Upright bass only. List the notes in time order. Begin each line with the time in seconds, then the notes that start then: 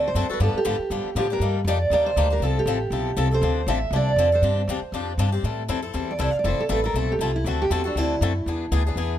Already playing: D2
0.15 F#2
0.29 muted upright bass stroke
0.40 G2
0.54 muted upright bass stroke
0.66 G#2
0.79 muted upright bass stroke
0.90 G2
1.04 muted upright bass stroke
1.15 A2
1.40 G2
1.64 F2
1.90 D#2
2.16 D2
2.40 C2
2.66 A1
2.90 B1
3.17 C2
3.42 D2
3.67 A1
3.91 C2
4.16 F2
4.42 G2
4.68 E2
4.81 muted upright bass stroke
4.92 F2
5.18 G2
5.43 A2
5.69 F2
5.94 E2
6.19 C2
6.33 muted upright bass stroke
6.44 F1
6.58 muted upright bass stroke
6.69 A1
6.94 B1
7.19 C2
7.44 D2
7.70 E2
7.95 D2
8.21 F#2
8.46 E2
8.71 D2
8.96 E2